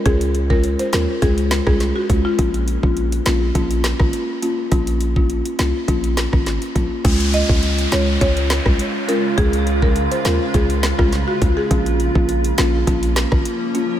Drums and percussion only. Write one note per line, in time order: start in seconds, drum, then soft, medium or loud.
0.06 kick loud
0.06 closed hi-hat medium
0.21 closed hi-hat medium
0.35 closed hi-hat medium
0.50 kick loud
0.64 closed hi-hat medium
0.79 closed hi-hat medium
0.93 cross-stick medium
0.93 snare loud
0.93 closed hi-hat medium
1.22 kick medium
1.22 closed hi-hat medium
1.38 closed hi-hat medium
1.51 cross-stick medium
1.51 snare loud
1.51 closed hi-hat medium
1.67 kick medium
1.67 cross-stick loud
1.80 snare medium
1.80 closed hi-hat medium
2.10 kick medium
2.10 closed hi-hat medium
2.39 kick loud
2.39 closed hi-hat medium
2.54 closed hi-hat medium
2.68 closed hi-hat medium
2.83 kick loud
2.97 closed hi-hat medium
3.12 closed hi-hat medium
3.26 cross-stick medium
3.26 snare loud
3.26 closed hi-hat medium
3.55 kick medium
3.55 closed hi-hat medium
3.71 closed hi-hat medium
3.84 cross-stick medium
3.84 snare loud
3.84 closed hi-hat medium
4.00 kick medium
4.00 cross-stick medium
4.13 closed hi-hat medium
4.42 closed hi-hat medium
4.72 kick loud
4.72 closed hi-hat medium
4.87 closed hi-hat medium
5.01 closed hi-hat medium
5.16 kick loud
5.30 closed hi-hat medium
5.45 closed hi-hat medium
5.59 cross-stick medium
5.59 snare loud
5.59 closed hi-hat medium
5.88 kick medium
5.88 closed hi-hat medium
6.04 closed hi-hat medium
6.17 cross-stick medium
6.17 snare loud
6.17 closed hi-hat medium
6.33 kick medium
6.33 cross-stick medium
6.46 snare medium
6.46 closed hi-hat medium
6.62 closed hi-hat soft
6.76 kick medium
6.76 closed hi-hat medium
7.05 kick loud
7.05 closed hi-hat medium
7.05 crash loud
7.20 closed hi-hat medium
7.34 closed hi-hat medium
7.49 kick loud
7.63 closed hi-hat medium
7.79 closed hi-hat medium
7.92 cross-stick medium
7.92 snare loud
7.92 closed hi-hat medium
8.21 kick medium
8.21 closed hi-hat medium
8.37 closed hi-hat medium
8.50 cross-stick loud
8.50 snare loud
8.50 closed hi-hat medium
8.66 kick loud
8.66 cross-stick medium
8.79 closed hi-hat medium
9.09 closed hi-hat medium
9.38 kick loud
9.38 closed hi-hat medium
9.53 closed hi-hat medium
9.67 closed hi-hat medium
9.82 kick loud
9.96 closed hi-hat medium
10.12 closed hi-hat medium
10.25 cross-stick medium
10.25 snare loud
10.25 closed hi-hat medium
10.54 kick medium
10.54 closed hi-hat medium
10.70 closed hi-hat medium
10.83 cross-stick medium
10.83 snare loud
10.83 closed hi-hat medium
10.99 kick medium
10.99 cross-stick loud
11.12 snare medium
11.12 closed hi-hat medium
11.42 kick medium
11.42 closed hi-hat medium
11.71 kick loud
11.71 closed hi-hat medium
11.86 closed hi-hat medium
12.00 closed hi-hat medium
12.15 kick loud
12.29 closed hi-hat medium
12.44 closed hi-hat medium
12.58 cross-stick medium
12.58 snare loud
12.58 closed hi-hat medium
12.87 kick medium
12.87 closed hi-hat medium
13.03 closed hi-hat medium
13.16 cross-stick medium
13.16 snare loud
13.16 closed hi-hat medium
13.32 kick loud
13.32 cross-stick loud
13.45 closed hi-hat medium
13.75 closed hi-hat medium